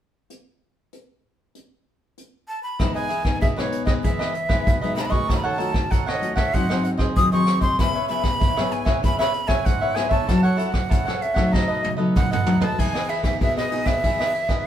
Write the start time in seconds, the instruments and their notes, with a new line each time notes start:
0.30 closed hi-hat
0.93 closed hi-hat
1.55 closed hi-hat
2.18 closed hi-hat
2.48 flute A5
2.63 flute B5
2.79 nylon-string guitar E3 G#3 B3 D#4, cavaquinho E4 G#4 B4 D#5, kick, cross-stick, closed hi-hat
2.95 cavaquinho G#4 B4 D#5, flute G#5, closed hi-hat
3.08 cavaquinho E4 G#4 B4 D#5, closed hi-hat
3.24 nylon-string guitar G#3 B3 D#4, muted cavaquinho stroke, kick, cross-stick, closed hi-hat
3.40 nylon-string guitar B2, cavaquinho E4 G#4 B4 D#5, flute E5, kick, closed hi-hat
3.56 nylon-string guitar G#3 B3 D#4, cavaquinho G#4 B4 D#5, flute C#5, cross-stick, closed hi-hat
3.72 closed hi-hat
3.85 cavaquinho G#4 B4 D#5, flute D#5, kick, cross-stick, closed hi-hat
4.03 nylon-string guitar E3 G#3 B3 D#4, cavaquinho E4 G#4 B4 D#5, flute E5, kick, closed hi-hat
4.19 cavaquinho G#4 B4 D#5, cross-stick, closed hi-hat
4.33 muted cavaquinho stroke, closed hi-hat
4.49 nylon-string guitar G#3 B3 D#4, cavaquinho G#4 B4, kick, cross-stick, closed hi-hat
4.67 nylon-string guitar B2, kick, closed hi-hat
4.81 nylon-string guitar G#3 B3 D#4, cavaquinho G#4 B4 D#5, closed hi-hat
4.95 cavaquinho E4 G#4 B4 D#5, flute B5, cross-stick, closed hi-hat
5.01 flute A5
5.05 flute B5
5.10 nylon-string guitar A3 C#4 F#4, cavaquinho G#4 B4 D#5, flute C#6, kick, closed hi-hat
5.27 nylon-string guitar D#3, cavaquinho D#4 A4 C#5 F#5, kick, cross-stick, closed hi-hat
5.37 flute B5
5.43 cavaquinho A4 C#5 F#5, flute A5
5.57 nylon-string guitar A3 C#4 F#4, cavaquinho D#4 A4 C#5 F#5, closed hi-hat
5.73 muted cavaquinho stroke, kick, cross-stick, closed hi-hat
5.90 nylon-string guitar D#3, cavaquinho D#4 A4 C#5 F#5, flute F#5, kick, closed hi-hat
6.06 cavaquinho A4 C#5 F#5, flute D#5, cross-stick
6.22 nylon-string guitar A3 C#4 F#4, closed hi-hat
6.36 cavaquinho A4 C#5 F#5, flute E5, kick, cross-stick, closed hi-hat
6.52 nylon-string guitar G#2 F#3 C4 D#4, cavaquinho F#4 G#4 C5 D#5, flute F#5, kick, closed hi-hat
6.69 nylon-string guitar F#3 C4 D#4, cavaquinho G#4 C5 D#5, cross-stick
6.83 muted cavaquinho stroke, closed hi-hat
6.97 cavaquinho G#4 C5 D#5, kick, cross-stick, closed hi-hat
7.16 nylon-string guitar D#3 F#3 C4 D#4, flute D#6, kick, closed hi-hat
7.32 nylon-string guitar F#3 C4 D#4, cavaquinho G#4 C5 D#5, flute C#6, closed hi-hat
7.46 cavaquinho F#4 G#4 C5 D#5, cross-stick, closed hi-hat
7.61 cavaquinho G#4 C5 D#5, flute C6, kick, closed hi-hat
7.79 nylon-string guitar C#3 B3 E4 G#4, cavaquinho E4 B4 C#5 E5, flute B5, kick, cross-stick, closed hi-hat
7.95 cavaquinho B4 C#5 E5, closed hi-hat
8.08 nylon-string guitar B3 E4 G#4, cavaquinho E4 B4 C#5 E5, flute B5, closed hi-hat
8.23 muted cavaquinho stroke, kick, cross-stick, closed hi-hat
8.40 nylon-string guitar G#2, cavaquinho E4 B4 C#5 E5, kick, closed hi-hat
8.56 nylon-string guitar B3 E4 G#4, cavaquinho B4 C#5 E5, cross-stick, closed hi-hat
8.71 flute G#5, closed hi-hat
8.85 nylon-string guitar B3 E4 G#4, cavaquinho B4 C#5 E5, kick, cross-stick, closed hi-hat
9.02 nylon-string guitar C#3 B3 E4 G#4, cavaquinho E4 B4 C#5 E5, flute B5, kick, closed hi-hat
9.19 cavaquinho B4 C#5 E5, flute B5, cross-stick, closed hi-hat
9.33 muted cavaquinho stroke, closed hi-hat
9.48 nylon-string guitar B3 E4 G#4, cavaquinho B4 C#5 E5, flute G#5, kick, cross-stick, closed hi-hat
9.65 nylon-string guitar G#2, flute F#5, kick, closed hi-hat
9.81 cavaquinho B4 C#5 E5, closed hi-hat
9.94 nylon-string guitar B3 E4 G#4, cavaquinho E4 B4 C#5 E5, flute G#5, cross-stick, closed hi-hat
10.09 cavaquinho B4 C#5 E5, flute A5, kick, closed hi-hat
10.27 nylon-string guitar F#3 C#4 E4 A4, cavaquinho E4 A4 C#5 F#5, kick, cross-stick, closed hi-hat
10.43 cavaquinho A4 C#5 F#5, flute F#5
10.57 nylon-string guitar C#4 E4 A4, cavaquinho E4 A4 C#5 F#5, closed hi-hat
10.71 muted cavaquinho stroke, kick, cross-stick, closed hi-hat
10.89 nylon-string guitar C#3, cavaquinho E4 A4 C#5 F#5, kick, closed hi-hat
11.05 nylon-string guitar C#4 E4 A4, cavaquinho A4 C#5 F#5, cross-stick
11.22 flute E5, closed hi-hat
11.34 nylon-string guitar F#3 A3 D#4, cavaquinho A4 C#5 F#5, kick, cross-stick, closed hi-hat
11.52 nylon-string guitar B2, cavaquinho D#4 A4 B4 D#5, flute D#5, kick, snare
11.68 cavaquinho A4 B4 D#5
11.82 muted cavaquinho stroke, high tom
11.97 nylon-string guitar F#3 A3 D#4, cavaquinho A4 B4 D#5
12.16 nylon-string guitar F#2, flute F#5, kick, mid tom
12.31 cavaquinho A4 B4 D#5, flute F#5, mid tom
12.46 nylon-string guitar F#3 A3 D#4, cavaquinho D#4 A4 B4 D#5, floor tom
12.60 cavaquinho A4 B4 D#5, flute A5, floor tom
12.78 nylon-string guitar E3 B3 D#4 G#4, cavaquinho E4 G#4 B4 D#5, flute G#5, kick, crash
12.94 cavaquinho G#4 B4 D#5, cross-stick
13.08 cavaquinho E4 G#4 B4 D#5, flute E5, ride
13.23 nylon-string guitar B3 D#4 G#4, flute E5, muted cavaquinho stroke, kick, cross-stick, ride
13.41 nylon-string guitar B2, cavaquinho E4 G#4 B4 D#5, flute E5, kick, ride
13.57 cavaquinho G#4 B4 D#5, flute D#5, cross-stick
13.71 nylon-string guitar B3 D#4 G#4, ride
13.85 cavaquinho G#4 B4 D#5, flute E5, kick, cross-stick, ride
14.03 nylon-string guitar E3 B3 D#4 G#4, cavaquinho E4 G#4 B4 D#5, kick, ride
14.19 cavaquinho G#4 B4 D#5, cross-stick
14.33 muted cavaquinho stroke, ride
14.48 nylon-string guitar B3 D#4 G#4, cavaquinho G#4 B4 D#5, kick, cross-stick, ride